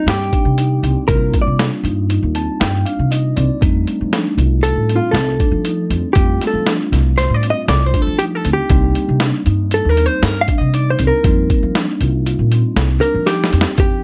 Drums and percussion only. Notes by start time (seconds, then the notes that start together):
0.08 snare, closed hi-hat
0.33 kick, closed hi-hat
0.58 closed hi-hat
0.84 closed hi-hat
1.08 kick, closed hi-hat
1.34 kick, closed hi-hat
1.59 snare, closed hi-hat
1.85 closed hi-hat
2.10 closed hi-hat
2.35 closed hi-hat
2.61 snare, closed hi-hat
2.86 closed hi-hat
3.12 closed hi-hat
3.37 closed hi-hat
3.62 kick, closed hi-hat
3.87 closed hi-hat
4.13 snare, closed hi-hat
4.38 closed hi-hat
4.64 closed hi-hat
4.89 closed hi-hat
5.15 snare, closed hi-hat
5.40 kick, closed hi-hat
5.65 closed hi-hat
5.91 closed hi-hat
6.15 kick, closed hi-hat
6.41 snare, closed hi-hat
6.67 snare, closed hi-hat
6.93 snare, closed hi-hat
7.18 snare, closed hi-hat
7.43 closed hi-hat
7.68 snare, closed hi-hat
7.94 kick, closed hi-hat
8.19 closed hi-hat
8.45 closed hi-hat
8.70 kick, closed hi-hat
8.95 closed hi-hat
9.20 snare, closed hi-hat
9.46 closed hi-hat
9.71 closed hi-hat
9.97 closed hi-hat
10.23 snare, closed hi-hat
10.48 kick, closed hi-hat
10.74 closed hi-hat
10.99 closed hi-hat
11.24 kick, closed hi-hat
11.50 kick, closed hi-hat
11.75 snare, closed hi-hat
12.01 closed hi-hat
12.26 closed hi-hat
12.52 closed hi-hat
12.77 snare, closed hi-hat
13.02 closed hi-hat
13.27 snare, closed hi-hat
13.44 snare
13.53 closed hi-hat
13.61 snare
13.78 kick, closed hi-hat